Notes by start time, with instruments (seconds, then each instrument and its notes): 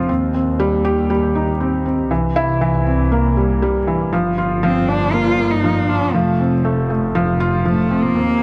Already playing: felt piano F3 A3 C4 F4
0.09 double bass section D#2, felt piano C4
0.34 felt piano C4
0.60 felt piano G3
0.85 felt piano G4
1.10 felt piano G3
1.35 felt piano D#4
1.60 felt piano C4
1.86 felt piano C4
2.11 double bass section C2, felt piano E3
2.36 felt piano E4
2.61 felt piano E3
2.86 felt piano C4
3.12 felt piano A#3
3.37 felt piano G3
3.62 felt piano G3
3.87 felt piano E3
4.12 double bass section G1, felt piano F3
4.38 felt piano F4
4.63 felt piano F3, cello C4
4.88 felt piano D4, cello D4
5.13 felt piano A#3, cello F4
5.39 felt piano A#3
5.51 cello D#4
5.64 felt piano F3
5.89 cello D4, felt piano F4
6.14 double bass section F1, felt piano F3, cello A3
6.40 felt piano C4
6.65 felt piano A3
6.90 felt piano A3
7.15 felt piano F3
7.40 felt piano F4
7.65 felt piano F3, cello A3
7.91 felt piano C4
8.02 cello A#3
8.16 double bass section D#2, felt piano C4